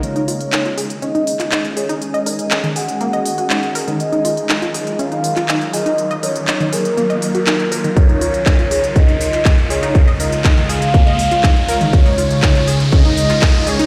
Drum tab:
HH |xxoxxxoxxxoxxxox|xxoxxxoxxxoxxxox|xxoxxxoxxxoxxxox|xxoxxxoxxxoxxxox|
CP |----x------xx---|----x-------x---|----x------xx---|----x-------x---|
BD |----------------|----------------|----------------|----------------|

HH |xxoxxxoxxxoxxxox|xxoxxxoxxxoxxxox|xxoxxxoxxxoxxxox|
CP |----x------xx---|----x-------x---|----x------xx---|
BD |o---o---o---o---|o---o---o---o---|o---o---o---o---|